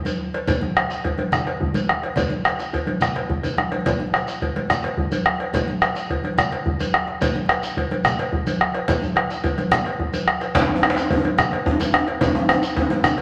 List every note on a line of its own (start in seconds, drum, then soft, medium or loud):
0.05 cowbell soft
0.05 high conga medium
0.05 shekere soft
0.20 djembe slap soft
0.34 cowbell medium
0.34 djembe slap medium
0.47 bombo low medium
0.47 cowbell medium
0.47 djembe tone medium
0.47 low conga medium
0.47 djembe bass medium
0.47 shekere medium
0.61 bombo rim soft
0.61 high conga medium
0.76 bombo rim loud
0.76 cowbell soft
0.76 shekere soft
0.90 djembe slap medium
0.90 shekere soft
1.04 bombo low medium
1.04 cowbell soft
1.04 djembe bass medium
1.18 bombo rim soft
1.18 cowbell soft
1.18 high conga medium
1.32 bombo rim medium
1.32 djembe tone medium
1.32 low conga medium
1.32 shekere medium
1.46 bombo rim soft
1.46 cowbell soft
1.46 djembe slap medium
1.46 high conga soft
1.60 bombo low loud
1.60 djembe bass medium
1.74 cowbell soft
1.74 high conga medium
1.74 shekere soft
1.89 bombo rim medium
1.89 djembe slap soft
2.03 cowbell soft
2.03 djembe slap soft
2.16 bombo rim soft
2.16 bombo low medium
2.16 cowbell medium
2.16 djembe slap soft
2.16 djembe tone medium
2.16 low conga medium
2.16 djembe bass medium
2.16 shekere medium
2.30 djembe slap soft
2.30 high conga medium
2.45 bombo rim medium
2.45 cowbell soft
2.45 djembe slap soft
2.45 high conga soft
2.45 shekere soft
2.59 bombo rim soft
2.59 djembe slap soft
2.59 shekere soft
2.73 bombo low medium
2.73 cowbell medium
2.73 high conga soft
2.73 djembe bass medium
2.73 shekere soft
2.87 cowbell soft
2.87 high conga medium
3.01 bombo rim medium
3.01 djembe tone medium
3.01 low conga medium
3.01 shekere medium
3.15 cowbell medium
3.15 djembe slap medium
3.15 low conga soft
3.29 bombo low medium
3.29 djembe bass medium
3.29 low conga soft
3.43 cowbell soft
3.43 djembe bass soft
3.43 low conga medium
3.43 shekere soft
3.58 bombo rim medium
3.58 djembe slap medium
3.58 high conga medium
3.72 cowbell medium
3.72 djembe slap medium
3.72 high conga medium
3.86 bombo low medium
3.86 cowbell medium
3.86 djembe tone medium
3.86 low conga medium
3.86 djembe bass medium
3.86 shekere medium
4.00 bombo rim soft
4.00 high conga medium
4.14 bombo rim medium
4.14 cowbell soft
4.14 shekere soft
4.27 djembe slap medium
4.27 shekere soft
4.42 bombo low medium
4.42 cowbell soft
4.42 djembe bass medium
4.56 bombo rim soft
4.56 cowbell soft
4.56 high conga medium
4.70 bombo rim medium
4.70 djembe tone medium
4.70 low conga medium
4.70 shekere medium
4.84 bombo rim soft
4.84 cowbell medium
4.84 djembe slap medium
4.84 high conga soft
4.97 bombo low loud
4.97 djembe bass medium
5.12 cowbell soft
5.12 high conga medium
5.12 shekere soft
5.26 bombo rim medium
5.26 djembe slap soft
5.40 cowbell soft
5.40 djembe slap soft
5.53 bombo low medium
5.53 cowbell medium
5.53 djembe tone medium
5.53 low conga medium
5.53 djembe bass medium
5.53 shekere medium
5.67 bombo rim soft
5.67 high conga medium
5.82 bombo rim loud
5.82 cowbell soft
5.82 shekere soft
5.96 djembe slap medium
5.96 shekere soft
6.10 bombo low medium
6.10 cowbell soft
6.10 djembe bass medium
6.24 bombo rim soft
6.24 cowbell soft
6.24 high conga medium
6.38 bombo rim medium
6.38 djembe tone medium
6.38 low conga medium
6.38 shekere medium
6.52 bombo rim soft
6.52 cowbell soft
6.52 djembe slap medium
6.52 high conga soft
6.66 bombo low loud
6.66 djembe bass medium
6.80 cowbell soft
6.80 high conga medium
6.80 shekere medium
6.94 bombo rim loud
6.94 djembe slap soft
7.07 djembe slap soft
7.21 bombo low medium
7.21 cowbell medium
7.21 djembe tone medium
7.21 djembe bass medium
7.21 low conga medium
7.21 shekere medium
7.36 bombo rim soft
7.36 high conga medium
7.49 bombo rim loud
7.49 cowbell medium
7.49 shekere soft
7.63 djembe slap medium
7.63 shekere soft
7.77 bombo low medium
7.77 cowbell medium
7.77 djembe bass medium
7.91 bombo rim soft
7.91 cowbell medium
7.91 high conga medium
8.05 bombo rim loud
8.05 djembe tone medium
8.05 low conga medium
8.05 shekere medium
8.19 bombo rim soft
8.19 cowbell medium
8.19 djembe slap medium
8.19 high conga soft
8.33 bombo low loud
8.33 djembe bass medium
8.47 cowbell medium
8.47 high conga medium
8.47 shekere soft
8.61 bombo rim loud
8.61 djembe slap soft
8.74 cowbell medium
8.74 djembe slap medium
8.88 bombo low medium
8.88 cowbell medium
8.88 djembe slap soft
8.88 djembe tone medium
8.88 low conga medium
8.88 djembe bass medium
8.88 shekere medium
9.02 djembe slap soft
9.02 high conga medium
9.02 shekere soft
9.16 bombo rim medium
9.16 cowbell medium
9.16 djembe slap soft
9.30 djembe slap medium
9.30 shekere soft
9.44 bombo rim soft
9.44 bombo low loud
9.44 cowbell medium
9.44 high conga soft
9.44 djembe bass medium
9.44 shekere soft
9.58 bombo rim soft
9.58 cowbell soft
9.58 high conga medium
9.58 shekere soft
9.72 bombo rim loud
9.72 djembe tone medium
9.72 low conga medium
9.72 shekere medium
9.86 cowbell medium
9.86 djembe slap medium
9.99 bombo low medium
9.99 djembe bass medium
10.13 cowbell soft
10.13 high conga medium
10.13 shekere soft
10.28 bombo rim medium
10.41 bombo rim soft
10.41 cowbell soft
10.41 djembe slap medium
10.41 high conga soft
10.41 shekere soft
10.55 bombo low medium
10.55 cowbell medium
10.55 djembe slap loud
10.55 djembe tone medium
10.55 low conga medium
10.55 djembe bass medium
10.55 shekere medium
10.62 djembe tone medium
10.69 bombo rim soft
10.69 high conga medium
10.76 djembe tone medium
10.83 bombo rim loud
10.83 cowbell medium
10.83 djembe tone medium
10.83 shekere soft
10.90 djembe slap medium
10.97 djembe slap medium
10.97 djembe tone medium
10.97 shekere soft
11.10 bombo low loud
11.10 cowbell medium
11.10 djembe tone medium
11.10 djembe bass medium
11.17 djembe tone medium
11.24 bombo rim soft
11.24 cowbell medium
11.24 high conga medium
11.38 bombo rim loud
11.38 djembe tone medium
11.38 low conga medium
11.38 shekere medium
11.52 bombo rim soft
11.52 cowbell medium
11.52 djembe slap soft
11.52 high conga soft
11.66 bombo low loud
11.66 djembe tone loud
11.66 djembe bass medium
11.80 cowbell soft
11.80 high conga medium
11.80 djembe tone medium
11.80 shekere medium
11.94 bombo rim loud
11.94 djembe slap soft
11.94 djembe tone medium
12.07 cowbell medium
12.07 djembe slap medium
12.21 bombo low medium
12.21 cowbell medium
12.21 djembe tone loud
12.21 djembe tone medium
12.21 low conga medium
12.21 djembe bass medium
12.21 shekere medium
12.35 bombo rim soft
12.35 djembe tone medium
12.35 high conga medium
12.49 bombo rim loud
12.49 cowbell soft
12.49 djembe tone medium
12.49 shekere soft
12.62 djembe slap soft
12.62 shekere medium
12.76 bombo low medium
12.76 cowbell soft
12.76 djembe tone loud
12.76 djembe bass medium
12.90 bombo rim soft
12.90 cowbell soft
12.90 djembe tone medium
12.90 high conga medium
13.04 bombo rim loud
13.04 djembe tone medium
13.04 low conga medium
13.04 shekere medium
13.18 cowbell medium
13.18 djembe slap medium
13.18 high conga soft